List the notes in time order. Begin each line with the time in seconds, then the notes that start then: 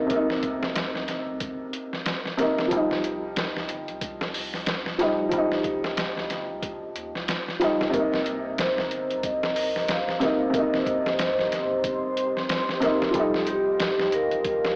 Already playing: C3 A#3 D#4
0.07 C2 C3, kick, closed hi-hat
0.11 A#3
0.16 D#4
0.30 snare
0.43 kick, closed hi-hat
0.63 snare
0.76 snare, closed hi-hat
0.95 C2, snare
1.08 G1, snare, closed hi-hat
1.29 C2
1.40 G1, kick, closed hi-hat
1.73 closed hi-hat
1.93 snare
2.06 snare, closed hi-hat
2.26 snare
2.37 C3 A#3, snare, closed hi-hat
2.42 D#4
2.58 snare
2.68 C2 F3, kick, closed hi-hat
2.73 G3
2.77 D#4
2.91 snare
3.04 closed hi-hat
3.36 snare, closed hi-hat
3.57 C2, snare
3.69 G1, closed hi-hat
3.88 C2, closed hi-hat
4.01 kick, closed hi-hat
4.21 snare
4.34 C2, open hi-hat
4.54 snare
4.66 snare, closed hi-hat
4.86 snare
4.98 C2 F3 G3, snare, closed hi-hat
5.03 D#4
5.29 C2 F3, kick, closed hi-hat
5.33 G3
5.38 D#4
5.52 snare
5.64 kick, closed hi-hat
5.84 snare
5.97 snare, closed hi-hat
6.17 C2, snare
6.30 G1, snare, closed hi-hat
6.50 C2
6.63 kick, closed hi-hat
6.96 D#2, closed hi-hat
7.15 C2, snare
7.28 snare, closed hi-hat
7.48 snare
7.59 F3 G3, snare, closed hi-hat
7.64 D#4
7.80 C2, snare
7.90 C2 C3 G4 C5 D#5 A#5, kick, closed hi-hat
7.94 A#3
7.99 D#4
8.14 snare
8.26 closed hi-hat
8.58 C5, snare, closed hi-hat
8.78 C2, snare
8.91 G1, closed hi-hat
9.10 C2, closed hi-hat
9.23 D#5, kick, closed hi-hat
9.43 snare
9.56 C2, open hi-hat
9.76 snare
9.88 F5, snare, closed hi-hat
10.09 snare
10.20 C2 C3 A#3, snare, closed hi-hat
10.24 D#4
10.50 C3 C6, kick
10.54 C2 A#3 D#5, closed hi-hat
10.59 D#4
10.74 snare
10.86 kick, closed hi-hat
11.06 snare
11.19 snare, closed hi-hat
11.39 C2, snare
11.52 G1, snare, closed hi-hat
11.71 C2
11.84 G1, kick, closed hi-hat
12.17 closed hi-hat
12.37 snare
12.49 snare, closed hi-hat
12.69 snare
12.80 C3 A#3, snare, closed hi-hat
12.85 D#4
13.02 snare
13.11 C2 F3, kick, closed hi-hat
13.15 G3 A4 F5
13.20 D#4
13.34 snare
13.47 G4, closed hi-hat
13.80 snare, closed hi-hat
13.99 C2, snare
14.12 G1 A#4, closed hi-hat
14.31 C2, closed hi-hat
14.44 kick, closed hi-hat
14.65 snare